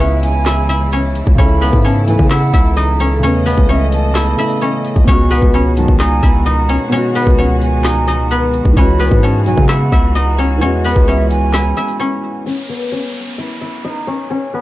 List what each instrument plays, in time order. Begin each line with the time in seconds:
Already playing: 808-style bass C#2, grand piano C#3 G#3 E4, string section C#3 E3 G#3 E4, guzheng B3 D#4 B4 D#5
0.00 guzheng C#4 C#5, flute E5, closed hi-hat
0.23 flute G#5, closed hi-hat
0.46 guzheng E4 E5, snare, clap, closed hi-hat
0.69 guzheng E4 E5, closed hi-hat
0.92 guzheng C#4 C#5, closed hi-hat
1.15 closed hi-hat
1.27 808-style bass C#2, kick
1.35 808-style bass C#2, grand piano C#3 A4, guzheng C#4 C#5, string section E4 A4, flute B5, kick, closed hi-hat
1.42 grand piano E4
1.61 guzheng B3 B4, open hi-hat
1.73 808-style bass G#2, kick
1.84 guzheng C#4 C#5, flute A5, closed hi-hat
2.07 analog polysynth C#2 A2 E3, flute G#5, closed hi-hat
2.19 808-style bass C#3, kick
2.30 guzheng E4 E5, flute F#5, snare, clap, closed hi-hat
2.53 808-style bass C#2, guzheng E4 E5, kick, closed hi-hat
2.77 guzheng D#4 D#5, closed hi-hat
3.00 guzheng C#4 C#5, closed hi-hat
3.19 808-style bass E2, grand piano C#3 A3, guzheng C#5, string section D#5, closed hi-hat
3.24 grand piano B3, guzheng C#4
3.46 guzheng B3 B4, open hi-hat
3.58 808-style bass C#2, kick
3.69 guzheng C#4 C#5, flute E5, closed hi-hat
3.92 flute A5, closed hi-hat
4.15 guzheng E4 E5, snare, clap, closed hi-hat
4.36 grand piano C#3 A3 E4, guzheng E4 E5, closed hi-hat
4.50 closed hi-hat
4.61 guzheng C#4 C#5, closed hi-hat
4.84 closed hi-hat
4.96 808-style bass C#2, kick, closed hi-hat
5.04 808-style bass C#2, grand piano B2 G#3, string section D#3 G#3 B3 F#4, guzheng C#5, flute C#6, kick, closed hi-hat
5.09 guzheng C#4, grand piano F#4
5.31 guzheng B3 B4, open hi-hat
5.42 808-style bass C#2, kick
5.54 guzheng C#4 C#5, flute B5, closed hi-hat
5.77 analog polysynth B1 G#2 D#3, flute A5, closed hi-hat
5.88 808-style bass C#2, kick
5.99 guzheng D#4 D#5, flute G#5, snare, clap, closed hi-hat
6.23 808-style bass C#2, guzheng E4 E5, kick, closed hi-hat
6.46 guzheng D#4 D#5, closed hi-hat
6.69 guzheng C#4 C#5, closed hi-hat
6.89 grand piano B2 G#3, guzheng C#5, closed hi-hat
6.93 guzheng C#4, grand piano F#4
7.15 guzheng B3 B4, open hi-hat
7.27 808-style bass C#2, kick
7.38 guzheng C#4 C#5, flute F#5, closed hi-hat
7.61 flute G#5, closed hi-hat
7.84 guzheng D#4 D#5, snare, clap, closed hi-hat
8.08 guzheng D#4 D#5, closed hi-hat
8.31 guzheng B3 B4, closed hi-hat
8.54 closed hi-hat
8.65 808-style bass C#2, kick
8.73 808-style bass C#2, grand piano E3 G#3, string section E3 B3 F#4, guzheng C#5, flute B5, kick, closed hi-hat
8.78 guzheng C#4, grand piano F#4
9.00 guzheng B3 B4, open hi-hat
9.11 808-style bass G#2, kick
9.23 guzheng C#4 C#5, flute A5, closed hi-hat
9.46 analog polysynth B1 G#2 F#3, flute G#5, closed hi-hat
9.58 808-style bass C#3, kick
9.69 guzheng E4 E5, flute F#5, snare, clap, closed hi-hat
9.92 808-style bass C#2, guzheng E4 E5, kick, closed hi-hat
10.15 guzheng D#4 D#5, closed hi-hat
10.38 guzheng C#4 C#5, closed hi-hat
10.58 808-style bass E2, grand piano E3 G#3, string section C#4, guzheng C#5, closed hi-hat
10.62 guzheng C#4, grand piano F#4
10.84 guzheng B3 B4, open hi-hat
10.96 808-style bass C#2, kick
11.08 guzheng C#4 C#5, flute E5, closed hi-hat
11.30 flute G#5, closed hi-hat
11.53 guzheng E4 E5, snare, clap, closed hi-hat
11.77 guzheng E4 E5, closed hi-hat
11.88 closed hi-hat
12.00 guzheng C#4 C#5
12.46 guzheng C#4 C#5, downlifter
12.69 guzheng B3 B4
12.92 guzheng C#4 C#5
13.38 guzheng E4 E5
13.61 guzheng E4 E5
13.85 guzheng D#4 D#5
14.07 guzheng C#4 C#5
14.30 guzheng C#4 C#5
14.54 guzheng B3 B4